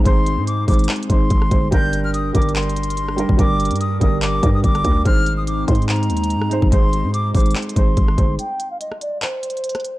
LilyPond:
<<
  \new Staff \with { instrumentName = "Flute" } { \time 4/4 \key aes \lydian \tempo 4 = 144 c'''4 d'''8 d'''8 r8 c'''4. | g'''8. f'''16 ees'''8 d'''8 c'''2 | d'''4 ees'''8 ees'''8 d'''8. ees'''16 d'''4 | f'''8. ees'''16 d'''8 c'''8 bes''2 |
c'''4 d'''8 d'''8 r8 c'''4. | g''8. f''16 ees''8 d''8 c''2 | }
  \new Staff \with { instrumentName = "Felt piano" } { \time 4/4 \key aes \lydian <aes ees' c''>4 r8 <aes ees' c''>8. r16 <aes ees' c''>8. r16 <aes ees' c''>8 | <g d' bes'>4 r8 <g d' bes'>4. r8 <g d' bes'>8 | <g d' bes'>4 r8 <g d' bes'>8. r16 <g d' bes'>8. r16 <g d' bes'>8 | <aes ees' c''>4 r8 <aes ees' c''>4. r8 <aes ees' c''>8 |
<aes ees' c''>4 r8 <aes ees' c''>8. r16 <aes ees' c''>8. r16 <aes ees' c''>8 | r1 | }
  \new Staff \with { instrumentName = "Analog synth pad" } { \time 4/4 \key aes \lydian <aes c' ees'>1 | <g d' bes'>1~ | <g d' bes'>1 | <aes c' ees'>1~ |
<aes c' ees'>1 | r1 | }
  \new Staff \with { instrumentName = "808-style bass" } { \clef bass \time 4/4 \key aes \lydian aes,,8. aes,8. aes,,8 r8 aes,,8 aes,,8 g,,8 | g,,4. g,,2~ g,,16 g,,16 | g,,8. g,8. g,,4 g,8 g,,8 d,8 | aes,,4. aes,4 ees,8~ ees,32 aes,8~ aes,32 aes,,16 |
aes,,8. aes,8. aes,,8 r8 aes,,8 aes,,8 g,,8 | r1 | }
  \new DrumStaff \with { instrumentName = "Drums" } \drummode { \time 4/4 <hh bd>8 hh8 hh8 <hh hho bd>32 hh32 hh32 hh32 \tuplet 3/2 { <hc hh>16 hh16 hh16 <hh bd>16 r16 r16 } <hh bd>16 ss16 <hh bd>8 | <hh bd>8 hh8 \tuplet 3/2 { hh16 r16 r16 <hh bd>16 hh16 hh16 <hc hh>16 hh16 hh16 hh16 hh16 hh16 } hh16 ss16 hh16 bd16 | <hh bd>8 hh32 hh32 hh32 hh32 hh8 <hh bd>8 <hc hh>8 <hh bd>8 <hh bd>16 <hh ss>16 <hh bd>8 | <hh bd>8 hh8 \tuplet 3/2 { hh16 r16 r16 <hh bd>16 hh16 hh16 <hc hh>16 hh16 hh16 hh16 hh16 hh16 } hh16 ss16 hh16 bd16 |
<hh bd>8 hh8 hh8 <hh hho bd>32 hh32 hh32 hh32 \tuplet 3/2 { <hc hh>16 hh16 hh16 <hh bd>16 r16 r16 } <hh bd>16 ss16 <hh bd>8 | hh8 hh8 hh16 ss16 hh8 \tuplet 3/2 { <hc hh>16 r16 r16 hh16 hh16 hh16 } hh32 hh32 <hh ss>32 hh32 hh8 | }
>>